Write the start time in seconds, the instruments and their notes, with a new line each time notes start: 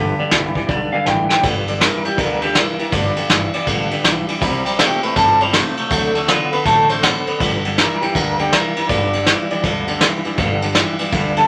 Already playing: upright bass G1, clean electric guitar G2 D3, steel-string acoustic guitar G2 D3 G3 B3 D4 G4
0.18 clean electric guitar G2 D3, steel-string acoustic guitar G3 B3 D4 G4, muted upright bass stroke
0.31 upright bass C2, steel-string acoustic guitar G2 D3 G3 B3 D4 G4, clean electric guitar G2 E3, snare, open hi-hat
0.55 clean electric guitar G2 E3, steel-string acoustic guitar G3 B3 D4 G4, kick
0.69 upright bass B1, clean electric guitar G2 D3 D5, steel-string acoustic guitar G3 B3 D4 G4, kick, open hi-hat
0.92 clean electric guitar G2 D3 F5, steel-string acoustic guitar G3 B3 D4 G4, muted upright bass stroke
1.06 upright bass A1, steel-string acoustic guitar G2 D3 G3 B3 D4 G4, clean electric guitar G2 E3 G5, snare
1.29 clean electric guitar G2 E3 G5, steel-string acoustic guitar G3 B3 D4 G4, muted upright bass stroke, snare
1.43 upright bass G1, steel-string acoustic guitar G2 D3 G3 B3 D4 G4, clean electric guitar G2 D3, kick, ride
1.68 clean electric guitar G2 D3, steel-string acoustic guitar G3 B3 D4 G4, ride
1.81 clean electric guitar G2 E3 A#4, steel-string acoustic guitar B3 D4 G4, snare, ride
2.05 clean electric guitar G2 E3 G4, steel-string acoustic guitar G3 B3 D4 G4, muted upright bass stroke, ride
2.18 upright bass D2, steel-string acoustic guitar G2 D3 G3 B3 D4 G4, clean electric guitar G2 D3 A#4, kick, ride
2.42 clean electric guitar G2 D3 G4, steel-string acoustic guitar G3 B3 D4 G4, ride
2.55 clean electric guitar G2 E3 A#4, steel-string acoustic guitar G3 B3 G4, snare, ride
2.79 clean electric guitar G2 E3, steel-string acoustic guitar G3 B3 D4 G4, muted upright bass stroke, ride
2.92 upright bass G1, clean electric guitar G2 D3 D5, steel-string acoustic guitar G2 D3 G3 B3 D4 G4, kick, ride
3.16 clean electric guitar G2 D3, steel-string acoustic guitar G3 B3 D4 G4, ride
3.30 upright bass G1, clean electric guitar G2 E3, steel-string acoustic guitar G3 B3, snare, ride
3.54 clean electric guitar G2 E3 D5, steel-string acoustic guitar G3 B3 D4 G4, muted upright bass stroke, ride
3.67 upright bass A1, steel-string acoustic guitar G2 D3 G3 B3 D4 G4, clean electric guitar G2 D3, kick, ride
3.91 clean electric guitar G2 D3, steel-string acoustic guitar G3 B3 D4 G4, muted upright bass stroke, ride
4.04 upright bass B1, clean electric guitar G2 E3, steel-string acoustic guitar G3 B3 D4 G4, snare, ride
4.27 clean electric guitar G2 E3, steel-string acoustic guitar G3 B3 D4 G4, muted upright bass stroke, ride
4.41 upright bass C2, steel-string acoustic guitar C3 G3 C4 E4 G4, clean electric guitar C3 G3, kick, ride
4.65 clean electric guitar C3 G3, steel-string acoustic guitar C4 E4 G4, ride
4.79 clean electric guitar C3 A3 G4, steel-string acoustic guitar G3 C4 E4 G4, snare, ride
5.02 clean electric guitar C3 A3 B4, steel-string acoustic guitar C4 E4 G4, muted upright bass stroke, ride
5.16 upright bass G1, steel-string acoustic guitar C3 G3 C4 E4 G4, clean electric guitar C3 G3 A4, kick, ride
5.40 clean electric guitar C3 G3 C5, steel-string acoustic guitar C4 E4 G4, ride
5.52 clean electric guitar C3 A3, steel-string acoustic guitar G3 C4 E4, snare, ride
5.77 clean electric guitar C3 A3, steel-string acoustic guitar C4 E4 G4, muted upright bass stroke, ride
5.90 upright bass D2, steel-string acoustic guitar D3 F#3 C4 D4 A4, clean electric guitar D3 A3, kick, ride
6.15 clean electric guitar D3 A3, steel-string acoustic guitar C4 D4 A4, ride
6.27 clean electric guitar D3 B3 F4, steel-string acoustic guitar F#3 C4 D4 A4, snare, ride
6.52 clean electric guitar D3 B3 B4, steel-string acoustic guitar C4 D4 A4, muted upright bass stroke, ride
6.65 upright bass A1, clean electric guitar D3 A3 A4, steel-string acoustic guitar D3 F#3 C4 D4 A4, kick, ride
6.89 clean electric guitar D3 A3 C5, steel-string acoustic guitar C4 D4 A4, ride
7.02 clean electric guitar D3 B3, steel-string acoustic guitar F#3 C4 D4 A4, snare, ride
7.27 clean electric guitar D3 B3, steel-string acoustic guitar C4 D4 A4, muted upright bass stroke, ride
7.40 upright bass G1, steel-string acoustic guitar G2 D3 G3 B3 D4 G4, clean electric guitar G2 D3, kick, ride
7.64 clean electric guitar G2 D3, steel-string acoustic guitar G3 B3 D4 G4, ride
7.77 clean electric guitar G2 E3 A#4, steel-string acoustic guitar G3 B3, snare, ride
8.01 clean electric guitar G2 E3 G4, steel-string acoustic guitar G3 B3 D4 G4, muted upright bass stroke, ride
8.15 upright bass D2, steel-string acoustic guitar G2 D3 G3 B3 D4 G4, clean electric guitar G2 D3 A#4, kick, ride
8.38 clean electric guitar G2 D3 G4, steel-string acoustic guitar G3 B3 D4 G4, ride
8.51 clean electric guitar G2 E3 A#4, steel-string acoustic guitar G3 B3, snare, ride
8.76 clean electric guitar G2 E3, steel-string acoustic guitar G3 B3 D4 G4, muted upright bass stroke, ride
8.89 upright bass G1, steel-string acoustic guitar G2 D3 G3 B3 D4 G4, clean electric guitar G2 D3 D5, kick, ride
9.13 clean electric guitar G2 D3, steel-string acoustic guitar G3 B3 D4 G4, ride
9.26 clean electric guitar G2 E3, steel-string acoustic guitar G3 B3, snare, ride
9.50 clean electric guitar G2 E3 D5, steel-string acoustic guitar G3 B3 D4 G4, muted upright bass stroke, ride
9.64 upright bass D2, steel-string acoustic guitar G2 D3 G3 B3 D4 G4, clean electric guitar G2 D3, kick, ride
9.87 clean electric guitar G2 D3, steel-string acoustic guitar G3 B3 D4 G4, ride
10.01 clean electric guitar G2 E3, steel-string acoustic guitar G3 B3 D4 G4, snare, ride
10.24 clean electric guitar G2 E3, steel-string acoustic guitar G3 B3 D4 G4, muted upright bass stroke, ride
10.38 upright bass G1, clean electric guitar G2 D3, steel-string acoustic guitar G2 D3 G3 B3 D4 G4, kick, ride
10.62 clean electric guitar G2 D3, steel-string acoustic guitar G3 B3 D4 G4, ride
10.75 clean electric guitar G2 E3, steel-string acoustic guitar G3 B3 D4 G4, snare, ride
10.99 clean electric guitar G2 E3, steel-string acoustic guitar G3 B3 D4 G4, ride
11.12 upright bass D2, steel-string acoustic guitar G2 D3 G3 B3 D4 G4, clean electric guitar G2 D3, kick, ride
11.36 clean electric guitar G2 D3 A4, steel-string acoustic guitar G3 B3 D4 G4, ride